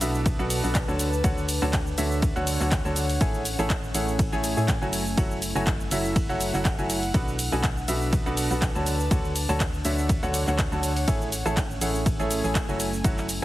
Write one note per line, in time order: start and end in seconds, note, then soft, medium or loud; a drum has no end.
0.00 0.36 B1 loud
0.00 0.36 B2 medium
0.00 3.21 D4 medium
0.00 0.36 D4 medium
0.00 0.36 F#4 medium
0.00 0.36 A4 medium
0.00 1.89 B4 medium
0.00 0.36 B4 medium
0.00 0.36 E5 medium
0.00 1.89 A5 medium
0.00 open hi-hat loud
0.00 shaker medium
0.15 shaker soft
0.26 kick loud
0.26 ride medium
0.26 shaker soft
0.39 0.61 B1 loud
0.39 0.60 B2 loud
0.39 0.60 D4 medium
0.39 0.60 F#4 medium
0.39 0.61 A4 medium
0.39 0.60 B4 medium
0.39 0.60 F#5 loud
0.39 shaker soft
0.50 open hi-hat loud
0.50 shaker medium
0.64 0.86 B1 loud
0.64 0.83 B2 medium
0.64 0.83 D4 medium
0.64 0.83 F#4 medium
0.64 0.83 A4 medium
0.64 0.83 B4 medium
0.64 0.83 F#5 medium
0.64 shaker soft
0.75 kick loud
0.75 clap loud
0.75 ride medium
0.75 shaker soft
0.88 1.22 D2 loud
0.88 1.08 D3 medium
0.88 1.08 D4 medium
0.88 1.08 F#4 medium
0.88 1.08 A4 medium
0.88 1.08 C#5 medium
0.88 1.08 A5 loud
0.88 shaker soft
0.99 open hi-hat loud
0.99 shaker medium
1.13 shaker soft
1.24 1.59 D2 loud
1.24 1.44 D3 medium
1.24 1.44 D4 medium
1.24 1.44 F#4 medium
1.24 1.44 A4 medium
1.24 1.44 C#5 medium
1.24 1.44 F#5 loud
1.24 kick loud
1.24 ride medium
1.24 shaker soft
1.38 shaker soft
1.49 open hi-hat loud
1.49 shaker medium
1.60 1.96 D2 loud
1.60 1.73 D3 loud
1.60 1.73 D4 medium
1.60 1.73 F#4 medium
1.60 1.73 A4 medium
1.60 3.90 C#5 medium
1.60 1.73 C#5 medium
1.60 1.73 A5 loud
1.60 shaker soft
1.73 kick loud
1.73 clap loud
1.73 ride medium
1.73 shaker soft
1.87 shaker soft
1.98 2.33 D2 loud
1.98 2.33 D3 medium
1.98 2.33 D4 medium
1.98 2.33 F#4 medium
1.98 2.33 A4 medium
1.98 2.33 C#5 medium
1.98 2.33 E5 medium
1.98 3.90 F#5 medium
1.98 open hi-hat loud
1.98 shaker medium
2.11 shaker soft
2.22 kick loud
2.22 ride medium
2.22 shaker soft
2.36 2.58 D2 loud
2.36 2.57 D3 loud
2.36 2.57 D4 medium
2.36 2.57 F#4 medium
2.36 2.57 A4 medium
2.36 2.57 C#5 medium
2.36 2.57 F#5 loud
2.36 shaker soft
2.47 open hi-hat loud
2.47 shaker medium
2.60 2.82 D2 medium
2.60 2.80 D3 medium
2.60 2.80 D4 medium
2.60 2.80 F#4 medium
2.60 2.80 A4 medium
2.60 2.80 C#5 medium
2.60 2.80 F#5 medium
2.60 clap soft
2.60 shaker soft
2.72 kick loud
2.72 clap loud
2.72 ride medium
2.72 shaker soft
2.85 3.19 D2 loud
2.85 3.04 D3 medium
2.85 3.04 D4 medium
2.85 3.04 F#4 medium
2.85 3.04 A4 medium
2.85 3.04 C#5 medium
2.85 3.04 A5 loud
2.85 shaker soft
2.96 open hi-hat loud
2.96 shaker medium
3.09 open hi-hat medium
3.09 shaker soft
3.21 3.56 A1 medium
3.21 3.41 A3 medium
3.21 5.82 C#4 medium
3.21 3.41 E4 medium
3.21 3.41 G#4 medium
3.21 3.41 A4 medium
3.21 3.41 C#5 medium
3.21 3.41 G#5 loud
3.21 kick loud
3.21 ride medium
3.21 shaker soft
3.34 shaker soft
3.42 7.84 A3 medium
3.42 open hi-hat loud
3.42 shaker medium
3.59 3.92 A1 loud
3.59 3.70 A3 loud
3.59 3.70 E4 medium
3.59 3.70 G#4 loud
3.59 3.70 A4 medium
3.59 3.70 C#5 loud
3.59 3.70 A5 loud
3.59 shaker soft
3.70 kick loud
3.70 clap loud
3.70 ride medium
3.70 shaker soft
3.84 shaker soft
3.94 4.30 A1 loud
3.94 4.29 A3 medium
3.94 4.29 E4 medium
3.94 4.29 G#4 medium
3.94 4.29 A4 medium
3.94 4.29 C#5 medium
3.94 4.29 F#5 medium
3.94 open hi-hat loud
3.94 shaker medium
3.99 5.82 G#5 medium
4.08 shaker soft
4.19 kick loud
4.19 ride medium
4.19 shaker soft
4.32 4.54 A1 loud
4.32 4.54 A3 loud
4.32 4.54 E4 medium
4.32 4.54 G#4 medium
4.32 4.54 A4 medium
4.32 4.54 C#5 loud
4.32 4.54 G#5 loud
4.32 shaker soft
4.44 open hi-hat loud
4.44 shaker medium
4.57 4.79 A2 loud
4.57 4.76 A3 medium
4.57 4.76 E4 medium
4.57 4.76 G#4 medium
4.57 4.76 A4 medium
4.57 4.76 C#5 medium
4.57 4.76 G#5 medium
4.57 shaker soft
4.68 kick loud
4.68 clap loud
4.68 ride medium
4.68 shaker soft
4.82 5.15 F#1 loud
4.82 5.01 F#3 medium
4.82 5.01 E4 medium
4.82 5.01 F#4 medium
4.82 5.01 A4 medium
4.82 5.01 C#5 medium
4.82 5.01 G#5 loud
4.82 shaker soft
4.93 7.84 E4 medium
4.93 open hi-hat loud
4.93 shaker medium
5.07 shaker soft
5.17 5.53 F#1 loud
5.17 5.38 F#3 medium
5.17 5.38 E4 medium
5.17 5.38 F#4 medium
5.17 5.38 A4 medium
5.17 5.38 C#5 medium
5.17 5.38 F#5 loud
5.17 kick loud
5.17 ride medium
5.17 shaker soft
5.31 shaker soft
5.42 open hi-hat loud
5.42 shaker medium
5.55 5.89 F#1 medium
5.55 5.67 F#3 loud
5.55 5.67 E4 medium
5.55 5.67 F#4 medium
5.55 5.67 A4 medium
5.55 5.67 C#5 medium
5.55 5.67 G#5 loud
5.55 shaker soft
5.63 7.83 F#5 medium
5.63 kick loud
5.63 clap loud
5.63 ride medium
5.63 shaker soft
5.80 shaker soft
5.91 6.27 F#1 loud
5.91 6.26 F#3 medium
5.91 6.26 E4 medium
5.91 6.26 F#4 medium
5.91 6.26 A4 medium
5.91 6.26 C#5 medium
5.91 6.26 E5 medium
5.91 open hi-hat loud
5.91 shaker medium
6.05 shaker soft
6.16 kick loud
6.16 ride medium
6.16 shaker soft
6.29 6.51 F#1 loud
6.29 6.51 F#3 loud
6.29 6.51 E4 medium
6.29 6.51 F#4 medium
6.29 6.51 A4 medium
6.29 6.51 C#5 medium
6.29 6.51 F#5 loud
6.29 shaker soft
6.41 open hi-hat loud
6.41 shaker medium
6.54 6.76 F#1 medium
6.54 6.73 F#3 medium
6.54 6.73 E4 medium
6.54 6.73 F#4 medium
6.54 6.73 A4 medium
6.54 6.73 C#5 medium
6.54 6.73 F#5 medium
6.54 clap soft
6.54 shaker soft
6.65 kick loud
6.65 clap loud
6.65 ride medium
6.65 shaker soft
6.78 7.12 F#1 loud
6.78 6.98 F#3 medium
6.78 6.98 E4 medium
6.78 6.98 F#4 medium
6.78 6.98 A4 medium
6.78 6.98 C#5 medium
6.78 6.98 G#5 loud
6.78 shaker soft
6.90 open hi-hat loud
6.90 shaker medium
7.03 open hi-hat medium
7.03 shaker soft
7.14 7.50 B1 loud
7.14 7.34 B2 medium
7.14 11.08 D4 medium
7.14 7.34 D4 medium
7.14 7.34 F#4 medium
7.14 7.34 A4 medium
7.14 7.34 B4 medium
7.14 7.34 F#5 loud
7.14 kick loud
7.14 ride medium
7.14 shaker soft
7.28 shaker soft
7.39 open hi-hat loud
7.39 shaker medium
7.52 7.86 B1 loud
7.52 7.64 B2 loud
7.52 7.64 D4 medium
7.52 7.64 F#4 medium
7.52 7.64 A4 loud
7.52 7.64 B4 medium
7.52 7.64 G#5 loud
7.52 shaker soft
7.63 9.74 B4 medium
7.63 kick loud
7.63 clap loud
7.63 ride medium
7.63 shaker soft
7.77 shaker soft
7.88 8.23 B1 loud
7.88 8.23 B2 medium
7.88 8.23 D4 medium
7.88 8.23 F#4 medium
7.88 8.23 A4 medium
7.88 8.23 B4 medium
7.88 8.23 E5 medium
7.88 9.53 A5 medium
7.88 open hi-hat loud
7.88 shaker medium
8.02 shaker soft
8.13 kick loud
8.13 ride medium
8.13 shaker soft
8.26 8.48 B1 loud
8.26 8.47 B2 loud
8.26 8.47 D4 medium
8.26 8.47 F#4 medium
8.26 8.47 A4 medium
8.26 8.47 B4 loud
8.26 8.47 F#5 loud
8.26 shaker soft
8.37 open hi-hat loud
8.37 shaker medium
8.51 8.72 B1 loud
8.51 8.70 B2 medium
8.51 8.70 D4 medium
8.51 8.70 F#4 medium
8.51 8.70 A4 medium
8.51 8.70 B4 medium
8.51 8.70 F#5 medium
8.51 shaker soft
8.62 kick loud
8.62 clap loud
8.62 ride medium
8.62 shaker soft
8.75 9.09 D2 loud
8.75 8.95 D3 medium
8.75 8.95 D4 medium
8.75 8.95 F#4 medium
8.75 8.95 A4 medium
8.75 8.95 C#5 medium
8.75 8.95 A5 loud
8.75 shaker soft
8.86 open hi-hat loud
8.86 shaker medium
9.00 shaker soft
9.11 9.46 D2 loud
9.11 9.31 D3 loud
9.11 9.31 D4 medium
9.11 9.31 F#4 medium
9.11 9.31 A4 medium
9.11 9.31 C#5 medium
9.11 9.31 F#5 loud
9.11 kick loud
9.11 ride medium
9.11 shaker soft
9.25 shaker soft
9.36 open hi-hat loud
9.36 shaker medium
9.48 9.83 D2 loud
9.48 9.60 D3 loud
9.48 9.60 D4 medium
9.48 9.60 F#4 loud
9.48 9.60 A4 medium
9.48 11.77 C#5 medium
9.48 9.60 C#5 medium
9.48 9.60 A5 loud
9.48 shaker soft
9.53 11.77 F#5 medium
9.60 kick loud
9.60 clap loud
9.60 ride medium
9.60 shaker soft
9.74 shaker soft
9.85 10.20 D2 loud
9.85 10.20 D3 medium
9.85 10.20 D4 medium
9.85 10.20 F#4 medium
9.85 10.20 A4 medium
9.85 10.20 C#5 medium
9.85 10.20 E5 medium
9.85 open hi-hat loud
9.85 shaker medium
9.98 shaker soft
10.09 kick loud
10.09 ride medium
10.09 shaker soft
10.23 10.45 D2 loud
10.23 10.44 D3 loud
10.23 10.44 D4 medium
10.23 10.44 F#4 medium
10.23 10.44 A4 medium
10.23 10.44 C#5 medium
10.23 10.44 F#5 loud
10.23 shaker soft
10.34 open hi-hat loud
10.34 shaker medium
10.47 10.69 D2 loud
10.47 10.67 D3 medium
10.47 10.67 D4 medium
10.47 10.67 F#4 medium
10.47 10.67 A4 medium
10.47 10.67 C#5 medium
10.47 10.67 F#5 medium
10.47 clap soft
10.47 shaker soft
10.59 kick loud
10.59 clap loud
10.59 ride medium
10.59 shaker soft
10.72 11.05 D2 loud
10.72 10.91 D3 medium
10.72 10.91 D4 medium
10.72 10.91 F#4 medium
10.72 10.91 A4 medium
10.72 10.91 C#5 medium
10.72 10.91 A5 loud
10.72 shaker soft
10.83 open hi-hat loud
10.83 shaker medium
10.96 open hi-hat medium
10.96 shaker soft
11.08 11.43 A1 medium
11.08 11.28 A3 medium
11.08 13.45 C#4 medium
11.08 11.28 E4 medium
11.08 11.28 G#4 medium
11.08 11.28 A4 medium
11.08 11.28 C#5 medium
11.08 11.28 G#5 loud
11.08 kick loud
11.08 ride medium
11.08 shaker soft
11.20 13.45 A3 medium
11.20 shaker soft
11.32 open hi-hat loud
11.32 shaker medium
11.46 11.79 A1 loud
11.46 11.57 A3 loud
11.46 11.57 E4 medium
11.46 11.57 G#4 medium
11.46 11.57 A4 medium
11.46 11.57 C#5 medium
11.46 11.57 A5 loud
11.46 shaker soft
11.57 kick loud
11.57 clap loud
11.57 ride medium
11.57 shaker soft
11.71 shaker soft
11.80 12.17 A1 loud
11.80 12.16 A3 medium
11.80 12.16 E4 medium
11.80 12.16 G#4 medium
11.80 12.16 A4 medium
11.80 12.16 C#5 medium
11.80 12.16 F#5 medium
11.80 13.45 G#5 medium
11.80 open hi-hat loud
11.80 shaker medium
11.95 shaker soft
12.06 kick loud
12.06 ride medium
12.06 shaker soft
12.19 12.41 A1 loud
12.19 12.41 A3 loud
12.19 12.41 E4 medium
12.19 12.41 G#4 medium
12.19 12.41 A4 medium
12.19 12.41 C#5 medium
12.19 12.41 G#5 loud
12.19 shaker soft
12.31 open hi-hat loud
12.31 shaker medium
12.44 12.66 A1 loud
12.44 12.63 A3 medium
12.44 12.63 E4 medium
12.44 12.63 G#4 medium
12.44 12.63 A4 medium
12.44 12.63 C#5 medium
12.44 12.63 G#5 medium
12.44 shaker soft
12.55 kick loud
12.55 clap loud
12.55 ride medium
12.55 shaker soft
12.69 13.02 F#1 loud
12.69 12.88 F#3 medium
12.69 12.88 E4 medium
12.69 12.88 F#4 medium
12.69 12.88 A4 medium
12.69 12.88 C#5 medium
12.69 12.88 G#5 loud
12.69 shaker soft
12.80 13.45 E4 medium
12.80 open hi-hat loud
12.80 shaker medium
12.94 shaker soft
13.04 13.40 F#1 loud
13.04 13.25 F#3 loud
13.04 13.25 E4 medium
13.04 13.25 F#4 medium
13.04 13.25 A4 medium
13.04 13.25 C#5 medium
13.04 13.25 F#5 loud
13.04 kick loud
13.04 ride medium
13.04 shaker soft
13.18 clap soft
13.18 shaker soft
13.29 13.45 F#5 medium
13.29 open hi-hat loud
13.29 shaker medium